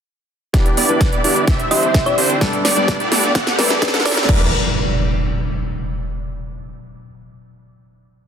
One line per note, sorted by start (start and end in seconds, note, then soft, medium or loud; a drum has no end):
0.53 1.46 D3 medium
0.53 0.75 E3 medium
0.53 1.46 G3 medium
0.53 0.75 B3 medium
0.53 1.47 B3 medium
0.53 0.70 B3 medium
0.53 0.70 D4 medium
0.53 0.75 D4 medium
0.53 2.39 E4 medium
0.53 0.70 E4 medium
0.53 4.25 G4 medium
0.53 0.70 G4 medium
0.53 0.75 G4 loud
0.53 0.70 D5 medium
0.53 kick loud
0.53 snare soft
0.53 closed hi-hat medium
0.53 riser medium
0.66 closed hi-hat soft
0.77 0.86 E1 loud
0.77 1.10 B3 medium
0.77 1.10 D4 medium
0.77 1.10 E4 medium
0.77 1.10 G4 medium
0.77 1.10 D5 loud
0.77 open hi-hat loud
0.88 1.06 E1 medium
0.88 1.10 E3 medium
0.88 1.10 B3 medium
0.88 1.10 D4 medium
0.88 1.10 B4 loud
0.88 closed hi-hat soft
1.01 kick loud
1.01 snare medium
1.01 closed hi-hat medium
1.12 1.21 B3 medium
1.12 1.21 D4 medium
1.12 1.21 E4 medium
1.12 1.21 G4 medium
1.12 1.21 D5 loud
1.12 closed hi-hat soft
1.24 1.41 E1 loud
1.24 1.37 E3 medium
1.24 1.37 B3 medium
1.24 1.45 B3 loud
1.24 1.45 D4 medium
1.24 1.37 D4 medium
1.24 1.45 E4 medium
1.24 1.45 G4 medium
1.24 1.38 G4 medium
1.24 1.45 D5 loud
1.24 open hi-hat loud
1.36 closed hi-hat soft
1.47 3.33 D3 medium
1.47 4.26 G3 medium
1.47 2.40 C4 medium
1.47 1.68 D4 medium
1.47 1.68 G4 medium
1.47 1.68 E5 loud
1.47 kick loud
1.47 snare medium
1.47 closed hi-hat medium
1.59 closed hi-hat soft
1.70 1.88 C2 loud
1.70 1.84 E3 medium
1.70 1.84 C4 medium
1.70 2.03 C4 medium
1.70 1.84 D4 medium
1.70 2.03 D4 medium
1.70 2.03 E4 medium
1.70 2.03 G4 medium
1.70 1.84 G4 loud
1.70 2.03 C5 loud
1.70 2.03 C5 medium
1.70 1.84 E5 medium
1.70 open hi-hat loud
1.83 closed hi-hat soft
1.94 kick loud
1.94 snare medium
1.94 closed hi-hat medium
2.06 2.38 E3 medium
2.06 2.39 C4 medium
2.06 2.15 C4 medium
2.06 2.15 D4 medium
2.06 2.39 D4 medium
2.06 2.15 E4 medium
2.06 2.15 G4 medium
2.06 2.39 G4 medium
2.06 2.19 D5 medium
2.06 2.15 E5 loud
2.06 closed hi-hat soft
2.18 2.35 C2 medium
2.18 2.38 C4 medium
2.18 2.38 D4 medium
2.18 2.38 E4 medium
2.18 2.38 G4 medium
2.18 2.38 C5 loud
2.18 2.38 C5 medium
2.18 open hi-hat loud
2.30 closed hi-hat soft
2.41 2.62 G2 loud
2.41 2.62 G3 medium
2.41 4.27 A3 medium
2.41 2.62 B3 medium
2.41 3.34 B3 medium
2.41 2.63 D4 medium
2.41 2.63 A4 loud
2.41 2.58 D5 medium
2.41 kick loud
2.41 snare medium
2.41 closed hi-hat medium
2.53 closed hi-hat soft
2.65 2.73 G1 loud
2.65 2.97 B3 loud
2.65 2.97 D4 medium
2.65 2.97 G4 medium
2.65 2.97 A4 medium
2.65 2.97 D5 loud
2.65 2.78 D5 medium
2.65 2.97 D5 loud
2.65 snare medium
2.65 open hi-hat loud
2.76 2.93 G1 loud
2.76 2.97 G2 loud
2.76 2.97 G3 medium
2.76 2.98 B3 medium
2.76 2.98 D4 medium
2.76 2.98 D5 loud
2.76 closed hi-hat soft
2.88 kick loud
2.88 snare medium
2.88 closed hi-hat medium
3.00 3.09 B3 loud
3.00 3.09 D4 medium
3.00 3.09 G4 medium
3.00 3.09 A4 medium
3.00 3.09 D5 loud
3.00 closed hi-hat soft
3.11 3.28 G1 loud
3.11 3.25 A2 medium
3.11 3.25 G3 medium
3.11 3.25 B3 medium
3.11 3.32 B3 loud
3.11 3.32 D4 medium
3.11 3.25 D4 medium
3.11 3.32 G4 medium
3.11 3.32 A4 medium
3.11 3.25 A4 medium
3.11 3.32 D5 loud
3.11 snare medium
3.11 open hi-hat loud
3.23 closed hi-hat soft
3.35 4.28 E3 medium
3.35 4.28 C4 medium
3.35 3.56 C4 medium
3.35 3.56 E4 medium
3.35 3.56 G4 medium
3.35 3.56 A4 medium
3.35 3.56 F#5 loud
3.35 kick loud
3.35 snare medium
3.35 closed hi-hat medium
3.47 snare medium
3.47 closed hi-hat soft
3.58 3.75 A1 loud
3.58 3.71 A2 loud
3.58 3.71 G3 medium
3.58 3.72 C4 medium
3.58 3.91 C4 medium
3.58 3.91 E4 medium
3.58 3.72 E4 medium
3.58 3.91 G4 medium
3.58 3.91 A4 medium
3.58 3.72 A4 loud
3.58 3.72 B4 medium
3.58 3.91 D5 medium
3.58 3.91 D5 loud
3.58 snare loud
3.58 open hi-hat loud
3.70 snare medium
3.82 kick loud
3.82 snare loud
3.82 closed hi-hat medium
3.88 snare medium
3.93 4.26 A2 medium
3.93 4.26 G3 medium
3.93 4.03 C4 medium
3.93 4.26 C4 medium
3.93 4.03 E4 medium
3.93 4.26 E4 medium
3.93 4.03 G4 medium
3.93 4.03 A4 medium
3.93 4.26 A4 medium
3.93 4.03 F#5 loud
3.93 snare medium
3.93 closed hi-hat soft
4.00 snare loud
4.05 4.25 C4 medium
4.05 4.25 E4 medium
4.05 4.25 G4 medium
4.05 4.25 A4 medium
4.05 4.25 D5 loud
4.05 4.29 D5 medium
4.05 4.25 D5 loud
4.05 snare loud
4.05 open hi-hat loud
4.11 snare medium
4.17 snare loud
4.17 closed hi-hat soft
4.23 snare loud
4.27 4.51 E1 loud
4.27 4.51 E3 medium
4.27 4.45 G3 medium
4.27 4.51 G3 medium
4.27 4.51 B3 medium
4.27 4.46 D4 medium
4.27 4.51 D4 medium
4.27 4.46 D4 medium
4.27 4.46 E4 medium
4.27 4.47 E4 medium
4.27 4.51 G4 medium
4.27 4.46 G4 medium
4.27 4.47 B4 loud
4.27 4.46 D5 medium
4.27 4.46 D5 loud
4.27 kick loud
4.27 crash medium
4.27 impact medium